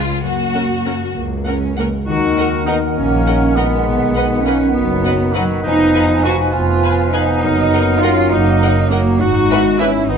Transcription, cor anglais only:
2.06 2.63 F#4 medium
2.66 2.80 D#4 medium
2.97 3.58 C#4 medium
3.57 4.45 B3 medium
4.46 4.59 C#4 medium
4.74 5.34 B3 medium
5.33 5.63 F#3 medium
5.63 6.25 D#4 medium
6.24 6.56 F#4 medium
6.54 7.15 F4 medium
7.14 8.02 D#4 medium
8.03 8.16 F4 medium
8.32 8.89 D#4 medium
8.90 9.20 A#3 medium
9.21 9.81 F#4 loud
9.79 10.11 E4 medium
10.09 10.18 D#4 medium

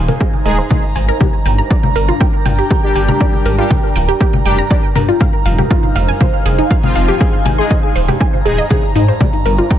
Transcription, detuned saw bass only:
0.00 0.11 D#1 loud
0.46 0.61 D#1 medium
0.96 1.11 G#1 loud
1.46 1.61 G1 medium
1.95 2.11 G1 medium
2.45 2.61 G1 medium
2.96 3.11 G1 medium
3.46 3.61 G#1 medium
3.96 4.11 D1 medium
4.46 4.61 F1 medium
4.96 5.11 G2 medium
5.46 5.61 F1 loud
5.96 6.11 F1 medium
6.46 6.61 F1 medium
6.96 7.11 F1 medium
7.46 7.61 G#1 medium
7.96 8.11 D#1 loud
8.46 8.61 D#1 medium
8.96 9.11 G#2 medium
9.46 9.61 G1 loud

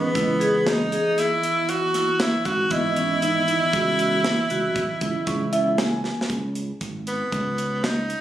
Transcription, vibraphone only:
0.15 0.30 E4 medium
0.40 0.70 G#4 medium
0.92 1.22 G#4 medium
1.43 1.73 E4 medium
1.95 2.25 E4 medium
2.46 2.61 F#4 medium
2.72 2.86 E4 medium
2.97 3.12 C#4 medium
3.22 3.38 D#4 medium
3.48 3.63 E4 medium
3.74 3.89 F#4 medium
3.99 4.14 F#4 medium
4.25 4.40 E4 medium
4.51 4.81 F#4 medium
5.02 5.17 E4 medium
5.27 5.42 C#4 medium
5.53 5.83 E4 medium

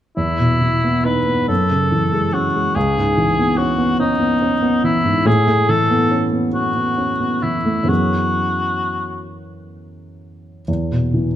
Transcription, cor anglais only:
0.17 1.07 E4 medium
1.05 1.48 B4 medium
1.48 2.35 A4 medium
2.33 2.77 F#4 medium
2.75 3.59 G#4 medium
3.57 3.99 F#4 medium
4.00 4.82 D#4 medium
4.84 5.28 E4 medium
5.27 5.71 G#4 medium
5.69 6.27 A4 medium
6.55 7.44 F#4 medium
7.43 7.90 E4 soft
7.89 9.28 F#4 medium

